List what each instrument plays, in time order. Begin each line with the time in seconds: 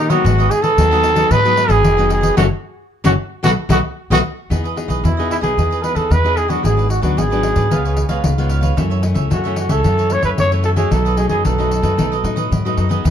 Already playing: nylon-string guitar A#2, upright bass D#3, trumpet D#4, cavaquinho G4
0.10 nylon-string guitar F#3 B3 D#4, trumpet F#4, cavaquinho G4 C#5 D#5, pandeiro
0.24 upright bass G#1, nylon-string guitar G#2, cavaquinho F#4 G#4 B4 D#5, pandeiro
0.38 cavaquinho G#4 B4 D#5, pandeiro
0.50 trumpet G#4, muted cavaquinho stroke, pandeiro
0.62 cavaquinho G#4 B4 D#5, trumpet A4, pandeiro
0.77 upright bass D#2, nylon-string guitar D#3 F#3 B3 D#4, cavaquinho F#4 G#4 B4 D#5, pandeiro
0.91 nylon-string guitar F#3 B3 D#4, cavaquinho G#4 B4 D#5, pandeiro
1.04 pandeiro
1.15 nylon-string guitar F#3 B3 D#4, cavaquinho G#4 B4 D#5, pandeiro
1.30 nylon-string guitar G#2, upright bass G#2, cavaquinho F#4 G#4 B4 D#5, trumpet B4, pandeiro
1.44 nylon-string guitar F#3 B3 D#4, cavaquinho G#4 B4 D#5, pandeiro
1.57 nylon-string guitar F#3 B3 D#4, pandeiro
1.68 upright bass G#1, trumpet G#4, cavaquinho G#4 B4 D#5, pandeiro
1.84 upright bass F1, nylon-string guitar D#3, pandeiro
1.97 nylon-string guitar F#3 B3 D#4, cavaquinho G#4 B4 D#5, pandeiro
2.09 cavaquinho F#4 G#4 B4 D#5, trumpet G#4, pandeiro
2.21 cavaquinho G#4 B4 D#5, pandeiro
2.37 upright bass F#1, nylon-string guitar F#3 A3 C#4, cavaquinho F#4 A4 C#5, trumpet F#4, pandeiro
3.04 upright bass F#1, nylon-string guitar F#3 A3 C#4, cavaquinho F#4 A4 C#5, trumpet F#4, pandeiro
3.43 upright bass B1, nylon-string guitar F#3 A3 B3, trumpet F#4, cavaquinho A4 B4 D#5, pandeiro
3.69 upright bass B1, nylon-string guitar F#3 A3 B3, trumpet F#4, cavaquinho A4 B4 D#5, pandeiro
4.10 upright bass B1, nylon-string guitar F#3 A3 B3, trumpet F#4, cavaquinho A4 B4 D#5, pandeiro
4.50 upright bass E2, nylon-string guitar E3 B3 D#4 G#4, cavaquinho E4 G#4 B4 D#5, pandeiro
4.64 cavaquinho G#4 B4 D#5, pandeiro
4.76 nylon-string guitar B3 D#4 G#4, muted cavaquinho stroke, pandeiro
4.88 upright bass B1, cavaquinho G#4 B4 D#5, pandeiro
5.03 upright bass E2, nylon-string guitar B2, cavaquinho E4 G#4 B4 D#5, trumpet E4, pandeiro
5.17 nylon-string guitar B3 D#4 G#4, cavaquinho G#4 B4 D#5, pandeiro
5.30 trumpet E4, pandeiro
5.41 upright bass B1, nylon-string guitar B3 D#4 G#4, trumpet G#4, cavaquinho G#4 B4 D#5, pandeiro
5.57 upright bass E2, nylon-string guitar E3 B3 D#4 G#4, cavaquinho E4 G#4 B4 D#5, pandeiro
5.71 cavaquinho G#4 B4 D#5, pandeiro
5.83 nylon-string guitar B3 D#4 G#4, trumpet B4, pandeiro
5.95 upright bass E2, cavaquinho G#4 B4 D#5, trumpet A4, pandeiro
6.10 upright bass E2, nylon-string guitar B2, trumpet B4, pandeiro
6.24 nylon-string guitar B3 D#4 G#4, cavaquinho G#4 B4 D#5, pandeiro
6.36 cavaquinho E4 G#4 B4 D#5, trumpet G#4, pandeiro
6.48 nylon-string guitar F#3 B3 D4, trumpet F#4, cavaquinho G#4 B4 D#5, pandeiro
6.63 upright bass G#1, nylon-string guitar G#2, cavaquinho F#4 G#4 B4 D5, trumpet G#4, pandeiro
6.77 cavaquinho G#4 B4 D5, pandeiro
6.89 trumpet F#4, muted cavaquinho stroke, pandeiro
7.01 upright bass D2, nylon-string guitar F#3 B3 D4, trumpet F#4, cavaquinho G#4 B4 D5, pandeiro
7.17 upright bass G#1, nylon-string guitar G#2, cavaquinho F#4 G#4 B4 D5, trumpet G#4, pandeiro
7.30 nylon-string guitar F#3 B3 D4, cavaquinho G#4 B4 D5, pandeiro
7.43 pandeiro
7.55 upright bass G#2, cavaquinho G#4 B4 D5, pandeiro
7.70 upright bass C#2, nylon-string guitar C#3 G#3 B3 F4, cavaquinho F4 B4 C#5 F5, pandeiro
7.84 cavaquinho B4 C#5 F5, pandeiro
7.97 pandeiro
8.09 upright bass C#2, nylon-string guitar G#3 B3 F4, cavaquinho B4 C#5 F5, pandeiro
8.24 upright bass C#2, nylon-string guitar G#2, pandeiro
8.38 nylon-string guitar G#3 B3 F4, cavaquinho B4 C#5 F5, pandeiro
8.49 cavaquinho F4 B4 C#5 F5, pandeiro
8.61 cavaquinho B4 C#5 F5, pandeiro
8.76 upright bass F#2, nylon-string guitar F#2 E3 A3 C#4, cavaquinho F#4 A4 C#5 E5, pandeiro
8.90 cavaquinho A4 C#5 E5, pandeiro
9.02 nylon-string guitar E3 A3 C#4, muted cavaquinho stroke, pandeiro
9.14 upright bass C#2, cavaquinho A4 C#5 E5, pandeiro
9.30 upright bass F#2, nylon-string guitar C#3, cavaquinho F#4 A4 C#5 E5, trumpet F#4, pandeiro
9.44 nylon-string guitar E3 A3 C#4, cavaquinho A4 C#5 E5, pandeiro
9.56 trumpet F#4, pandeiro
9.69 upright bass C#2, nylon-string guitar E3 A3 C#4, trumpet A4, cavaquinho A4 C#5 E5, pandeiro
9.83 upright bass F#2, nylon-string guitar F#2 E3 A3 C#4, cavaquinho F#4 A4 C#5 E5, pandeiro
9.98 cavaquinho A4 C#5 E5, pandeiro
10.10 nylon-string guitar E3 A3 C#4, trumpet C#5, pandeiro
10.22 upright bass F#2, cavaquinho A4 C#5 E5, trumpet B4, pandeiro
10.38 upright bass F#2, nylon-string guitar C#3, trumpet C#5, pandeiro
10.51 nylon-string guitar E3 A3 C#4, cavaquinho A4 C#5 E5, pandeiro
10.63 cavaquinho F#4 A4 C#5 E5, trumpet A4, pandeiro
10.76 nylon-string guitar F#3 A3 D#4, trumpet G#4, cavaquinho A4 C#5 E5, pandeiro
10.91 upright bass B1, nylon-string guitar B2, cavaquinho D#4 A4 B4 D#5, trumpet A4, pandeiro
11.05 cavaquinho A4 B4 D#5, pandeiro
11.17 nylon-string guitar F#3 A3 D#4, trumpet G#4, muted cavaquinho stroke, pandeiro
11.29 upright bass F#2, trumpet G#4, cavaquinho A4 B4 D#5, pandeiro
11.44 upright bass B1, nylon-string guitar F#2, cavaquinho D#4 A4 B4 D#5, trumpet A4, pandeiro
11.58 nylon-string guitar F#3 A3 D#4, cavaquinho A4 B4 D#5, pandeiro
11.71 pandeiro
11.82 upright bass F#2, nylon-string guitar F#3 A3 D#4, cavaquinho A4 B4 D#5, pandeiro
11.97 upright bass B1, nylon-string guitar B2 F#3 A3 D#4, cavaquinho D#4 A4 B4 D#5, pandeiro
12.12 cavaquinho A4 B4 D#5, pandeiro
12.24 upright bass A2, nylon-string guitar F#3 A3 D#4, pandeiro
12.36 cavaquinho A4 B4 D#5, pandeiro
12.51 nylon-string guitar F#2, upright bass G#2, pandeiro
12.65 nylon-string guitar F#3 A3 D#4, cavaquinho A4 B4 D#5, pandeiro
12.76 upright bass F#2, cavaquinho D#4 A4 B4 D#5, pandeiro
12.89 nylon-string guitar B3 D#4 G#4, cavaquinho A4 B4 D#5, pandeiro
13.04 upright bass E2, nylon-string guitar E3, cavaquinho E4 G#4 B4 D#5, pandeiro